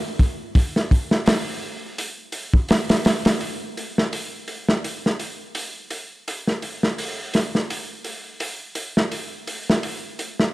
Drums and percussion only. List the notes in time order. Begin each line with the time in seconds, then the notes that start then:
0.19 kick, open hi-hat
0.55 kick, open hi-hat
0.76 snare
0.91 kick, open hi-hat
1.11 snare
1.26 snare, open hi-hat
1.98 open hi-hat
2.32 open hi-hat
2.54 kick
2.69 snare, open hi-hat
2.89 snare, open hi-hat
3.05 snare, open hi-hat
3.25 snare, open hi-hat
3.41 open hi-hat
3.77 open hi-hat
3.98 snare
4.13 open hi-hat
4.48 open hi-hat
4.69 snare
4.84 open hi-hat
5.06 snare
5.19 open hi-hat
5.55 open hi-hat
5.90 open hi-hat
6.28 open hi-hat
6.47 snare
6.62 open hi-hat
6.83 snare
6.98 open hi-hat
7.34 snare, open hi-hat
7.55 snare
7.70 open hi-hat
8.04 open hi-hat
8.40 open hi-hat
8.75 open hi-hat
8.97 snare
9.12 open hi-hat
9.47 open hi-hat
9.70 snare
9.83 open hi-hat
10.19 open hi-hat
10.40 snare